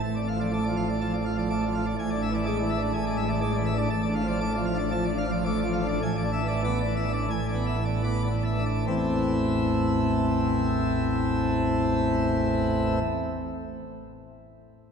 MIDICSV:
0, 0, Header, 1, 2, 480
1, 0, Start_track
1, 0, Key_signature, 0, "minor"
1, 0, Tempo, 484653
1, 43, Time_signature, 4, 2, 24, 8
1, 4362, Tempo, 527704
1, 5322, Tempo, 590551
1, 6282, Tempo, 663717
1, 6762, Tempo, 741656
1, 7242, Tempo, 835655
1, 7722, Tempo, 877193
1, 11026, End_track
2, 0, Start_track
2, 0, Title_t, "Pipe organ"
2, 0, Program_c, 0, 19
2, 37, Note_on_c, 0, 33, 77
2, 37, Note_on_c, 0, 81, 74
2, 38, Note_on_c, 0, 45, 76
2, 147, Note_off_c, 0, 81, 0
2, 159, Note_on_c, 0, 74, 68
2, 268, Note_off_c, 0, 74, 0
2, 279, Note_on_c, 0, 77, 66
2, 362, Note_on_c, 0, 53, 61
2, 388, Note_off_c, 0, 77, 0
2, 403, Note_on_c, 0, 74, 67
2, 505, Note_off_c, 0, 53, 0
2, 510, Note_off_c, 0, 74, 0
2, 526, Note_on_c, 0, 86, 99
2, 528, Note_on_c, 0, 57, 65
2, 632, Note_off_c, 0, 86, 0
2, 640, Note_on_c, 0, 74, 72
2, 668, Note_off_c, 0, 57, 0
2, 684, Note_on_c, 0, 53, 64
2, 748, Note_off_c, 0, 74, 0
2, 758, Note_on_c, 0, 77, 70
2, 825, Note_off_c, 0, 53, 0
2, 866, Note_off_c, 0, 77, 0
2, 881, Note_on_c, 0, 74, 64
2, 988, Note_off_c, 0, 74, 0
2, 1000, Note_on_c, 0, 53, 70
2, 1003, Note_on_c, 0, 81, 72
2, 1109, Note_off_c, 0, 81, 0
2, 1123, Note_on_c, 0, 74, 65
2, 1142, Note_off_c, 0, 53, 0
2, 1228, Note_off_c, 0, 74, 0
2, 1243, Note_on_c, 0, 77, 72
2, 1324, Note_on_c, 0, 53, 66
2, 1348, Note_off_c, 0, 77, 0
2, 1367, Note_on_c, 0, 74, 64
2, 1464, Note_off_c, 0, 53, 0
2, 1470, Note_off_c, 0, 74, 0
2, 1484, Note_on_c, 0, 57, 69
2, 1484, Note_on_c, 0, 86, 79
2, 1589, Note_off_c, 0, 86, 0
2, 1605, Note_on_c, 0, 74, 71
2, 1625, Note_off_c, 0, 57, 0
2, 1649, Note_on_c, 0, 53, 64
2, 1709, Note_off_c, 0, 74, 0
2, 1730, Note_on_c, 0, 77, 76
2, 1787, Note_off_c, 0, 53, 0
2, 1832, Note_off_c, 0, 77, 0
2, 1842, Note_on_c, 0, 74, 73
2, 1916, Note_off_c, 0, 33, 0
2, 1917, Note_off_c, 0, 45, 0
2, 1942, Note_off_c, 0, 74, 0
2, 1969, Note_on_c, 0, 33, 84
2, 1970, Note_on_c, 0, 45, 84
2, 1972, Note_on_c, 0, 80, 78
2, 2073, Note_off_c, 0, 80, 0
2, 2086, Note_on_c, 0, 74, 69
2, 2120, Note_on_c, 0, 62, 70
2, 2189, Note_off_c, 0, 74, 0
2, 2202, Note_on_c, 0, 76, 75
2, 2261, Note_off_c, 0, 62, 0
2, 2281, Note_on_c, 0, 52, 70
2, 2307, Note_off_c, 0, 76, 0
2, 2320, Note_on_c, 0, 74, 74
2, 2421, Note_off_c, 0, 52, 0
2, 2425, Note_off_c, 0, 74, 0
2, 2434, Note_on_c, 0, 56, 73
2, 2435, Note_on_c, 0, 86, 107
2, 2542, Note_off_c, 0, 86, 0
2, 2555, Note_on_c, 0, 74, 76
2, 2576, Note_off_c, 0, 56, 0
2, 2593, Note_on_c, 0, 52, 72
2, 2661, Note_off_c, 0, 74, 0
2, 2671, Note_on_c, 0, 76, 79
2, 2735, Note_off_c, 0, 52, 0
2, 2747, Note_on_c, 0, 62, 76
2, 2778, Note_off_c, 0, 76, 0
2, 2793, Note_on_c, 0, 74, 70
2, 2890, Note_off_c, 0, 33, 0
2, 2890, Note_off_c, 0, 62, 0
2, 2891, Note_off_c, 0, 45, 0
2, 2899, Note_off_c, 0, 74, 0
2, 2910, Note_on_c, 0, 33, 80
2, 2910, Note_on_c, 0, 80, 82
2, 2911, Note_on_c, 0, 45, 81
2, 3016, Note_off_c, 0, 80, 0
2, 3032, Note_on_c, 0, 74, 72
2, 3068, Note_on_c, 0, 56, 75
2, 3136, Note_off_c, 0, 74, 0
2, 3143, Note_on_c, 0, 76, 86
2, 3209, Note_off_c, 0, 56, 0
2, 3222, Note_on_c, 0, 52, 77
2, 3250, Note_off_c, 0, 76, 0
2, 3261, Note_on_c, 0, 74, 72
2, 3365, Note_off_c, 0, 52, 0
2, 3369, Note_off_c, 0, 74, 0
2, 3375, Note_on_c, 0, 86, 93
2, 3378, Note_on_c, 0, 56, 81
2, 3485, Note_off_c, 0, 86, 0
2, 3504, Note_on_c, 0, 74, 81
2, 3523, Note_off_c, 0, 56, 0
2, 3543, Note_on_c, 0, 52, 76
2, 3611, Note_off_c, 0, 74, 0
2, 3621, Note_on_c, 0, 76, 80
2, 3686, Note_off_c, 0, 52, 0
2, 3704, Note_on_c, 0, 62, 85
2, 3730, Note_off_c, 0, 76, 0
2, 3745, Note_on_c, 0, 74, 84
2, 3837, Note_off_c, 0, 33, 0
2, 3837, Note_off_c, 0, 45, 0
2, 3841, Note_off_c, 0, 62, 0
2, 3848, Note_off_c, 0, 74, 0
2, 3866, Note_on_c, 0, 81, 86
2, 3867, Note_on_c, 0, 33, 105
2, 3869, Note_on_c, 0, 45, 99
2, 3975, Note_off_c, 0, 81, 0
2, 3986, Note_on_c, 0, 74, 87
2, 4031, Note_on_c, 0, 62, 82
2, 4097, Note_off_c, 0, 74, 0
2, 4110, Note_on_c, 0, 77, 83
2, 4177, Note_off_c, 0, 62, 0
2, 4197, Note_on_c, 0, 53, 75
2, 4221, Note_off_c, 0, 77, 0
2, 4236, Note_on_c, 0, 74, 87
2, 4344, Note_off_c, 0, 53, 0
2, 4347, Note_off_c, 0, 74, 0
2, 4362, Note_on_c, 0, 57, 81
2, 4363, Note_on_c, 0, 86, 126
2, 4465, Note_off_c, 0, 86, 0
2, 4475, Note_on_c, 0, 74, 91
2, 4499, Note_off_c, 0, 57, 0
2, 4512, Note_on_c, 0, 53, 79
2, 4579, Note_off_c, 0, 74, 0
2, 4591, Note_on_c, 0, 77, 85
2, 4653, Note_off_c, 0, 53, 0
2, 4669, Note_on_c, 0, 62, 84
2, 4697, Note_off_c, 0, 77, 0
2, 4709, Note_on_c, 0, 74, 87
2, 4812, Note_off_c, 0, 62, 0
2, 4816, Note_off_c, 0, 74, 0
2, 4828, Note_on_c, 0, 53, 83
2, 4829, Note_on_c, 0, 81, 98
2, 4937, Note_off_c, 0, 81, 0
2, 4945, Note_on_c, 0, 74, 92
2, 4972, Note_off_c, 0, 53, 0
2, 4985, Note_on_c, 0, 62, 87
2, 5056, Note_off_c, 0, 74, 0
2, 5069, Note_on_c, 0, 77, 93
2, 5134, Note_off_c, 0, 62, 0
2, 5153, Note_on_c, 0, 53, 88
2, 5180, Note_off_c, 0, 77, 0
2, 5191, Note_on_c, 0, 74, 87
2, 5302, Note_off_c, 0, 53, 0
2, 5305, Note_off_c, 0, 74, 0
2, 5316, Note_on_c, 0, 57, 88
2, 5317, Note_on_c, 0, 86, 106
2, 5420, Note_off_c, 0, 86, 0
2, 5430, Note_on_c, 0, 74, 86
2, 5453, Note_off_c, 0, 57, 0
2, 5467, Note_on_c, 0, 53, 85
2, 5534, Note_off_c, 0, 74, 0
2, 5542, Note_on_c, 0, 77, 91
2, 5607, Note_off_c, 0, 53, 0
2, 5623, Note_on_c, 0, 62, 87
2, 5649, Note_off_c, 0, 77, 0
2, 5667, Note_on_c, 0, 74, 89
2, 5753, Note_off_c, 0, 33, 0
2, 5753, Note_off_c, 0, 45, 0
2, 5758, Note_off_c, 0, 62, 0
2, 5768, Note_off_c, 0, 74, 0
2, 5781, Note_on_c, 0, 80, 91
2, 5782, Note_on_c, 0, 33, 101
2, 5782, Note_on_c, 0, 45, 96
2, 5890, Note_off_c, 0, 80, 0
2, 5902, Note_on_c, 0, 74, 87
2, 5944, Note_on_c, 0, 62, 88
2, 6013, Note_off_c, 0, 74, 0
2, 6028, Note_on_c, 0, 76, 87
2, 6092, Note_off_c, 0, 62, 0
2, 6114, Note_on_c, 0, 52, 78
2, 6140, Note_off_c, 0, 76, 0
2, 6149, Note_on_c, 0, 74, 85
2, 6264, Note_off_c, 0, 52, 0
2, 6265, Note_off_c, 0, 74, 0
2, 6283, Note_on_c, 0, 59, 85
2, 6283, Note_on_c, 0, 86, 123
2, 6385, Note_off_c, 0, 86, 0
2, 6398, Note_on_c, 0, 74, 83
2, 6420, Note_off_c, 0, 59, 0
2, 6435, Note_on_c, 0, 52, 80
2, 6503, Note_off_c, 0, 74, 0
2, 6516, Note_on_c, 0, 76, 86
2, 6578, Note_off_c, 0, 52, 0
2, 6598, Note_on_c, 0, 62, 76
2, 6624, Note_off_c, 0, 76, 0
2, 6635, Note_on_c, 0, 74, 81
2, 6745, Note_off_c, 0, 62, 0
2, 6746, Note_off_c, 0, 45, 0
2, 6747, Note_off_c, 0, 33, 0
2, 6747, Note_off_c, 0, 74, 0
2, 6761, Note_on_c, 0, 33, 88
2, 6761, Note_on_c, 0, 45, 87
2, 6761, Note_on_c, 0, 80, 89
2, 6863, Note_off_c, 0, 80, 0
2, 6879, Note_on_c, 0, 74, 75
2, 6915, Note_on_c, 0, 59, 73
2, 6983, Note_off_c, 0, 74, 0
2, 6995, Note_on_c, 0, 76, 78
2, 7058, Note_off_c, 0, 59, 0
2, 7073, Note_on_c, 0, 52, 68
2, 7103, Note_off_c, 0, 76, 0
2, 7114, Note_on_c, 0, 74, 67
2, 7222, Note_off_c, 0, 52, 0
2, 7227, Note_off_c, 0, 74, 0
2, 7235, Note_on_c, 0, 59, 71
2, 7236, Note_on_c, 0, 86, 82
2, 7341, Note_off_c, 0, 86, 0
2, 7352, Note_on_c, 0, 74, 67
2, 7376, Note_off_c, 0, 59, 0
2, 7391, Note_on_c, 0, 52, 64
2, 7460, Note_off_c, 0, 74, 0
2, 7469, Note_on_c, 0, 76, 68
2, 7537, Note_off_c, 0, 52, 0
2, 7552, Note_on_c, 0, 62, 66
2, 7581, Note_off_c, 0, 76, 0
2, 7593, Note_on_c, 0, 74, 73
2, 7694, Note_off_c, 0, 62, 0
2, 7699, Note_off_c, 0, 33, 0
2, 7699, Note_off_c, 0, 45, 0
2, 7701, Note_off_c, 0, 74, 0
2, 7715, Note_on_c, 0, 33, 68
2, 7715, Note_on_c, 0, 40, 60
2, 7716, Note_on_c, 0, 57, 61
2, 7716, Note_on_c, 0, 60, 62
2, 7717, Note_on_c, 0, 52, 62
2, 7717, Note_on_c, 0, 64, 61
2, 9965, Note_off_c, 0, 33, 0
2, 9965, Note_off_c, 0, 40, 0
2, 9966, Note_off_c, 0, 57, 0
2, 9966, Note_off_c, 0, 60, 0
2, 9967, Note_off_c, 0, 52, 0
2, 9967, Note_off_c, 0, 64, 0
2, 11026, End_track
0, 0, End_of_file